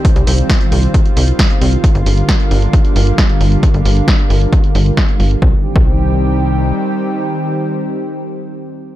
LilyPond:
<<
  \new Staff \with { instrumentName = "Analog synth pad" } { \clef bass \time 4/4 \key c \minor \tempo 4 = 134 << { f'1~ | f'1~ | f'1 | <ees g c' g'>1~ |
<ees g c' g'>1 | } \\ { <ees g c'>1 | <d g bes>1~ | <d g bes>1 | r1 |
r1 | } >> }
  \new Staff \with { instrumentName = "Analog synth bass" } { \clef bass \time 4/4 \key c \minor r16 c,16 c,16 r8. c,16 r8. c,16 r8. c,16 r16 | r16 g,,16 g,,16 r8. g,,16 r8. g,,16 r8. g,,16 r16 | r16 g,,16 g,,16 r8. g,,16 r8. g,,16 r8. g,,16 r16 | c,16 r8 c,2~ c,16 r4 |
r1 | }
  \new DrumStaff \with { instrumentName = "Drums" } \drummode { \time 4/4 <hh bd>16 hh16 hho16 hh16 <hh bd sn>16 hh16 hho16 hh16 <hh bd>16 hh16 hho16 hh16 <hh bd sn>16 hh16 hho16 hh16 | <hh bd>16 hh16 hho16 hh16 <hh bd sn>16 hh16 hho16 hh16 <hh bd>16 hh16 hho16 hh16 <hh bd sn>16 hh16 hho16 hh16 | <hh bd>16 hh16 hho16 hh16 <hh bd sn>16 hh16 hho16 hh16 <hh bd>16 hh16 hho16 hh16 <hh bd sn>16 hh16 hho16 hh16 | bd8. bd16 r4 r4 r4 |
r4 r4 r4 r4 | }
>>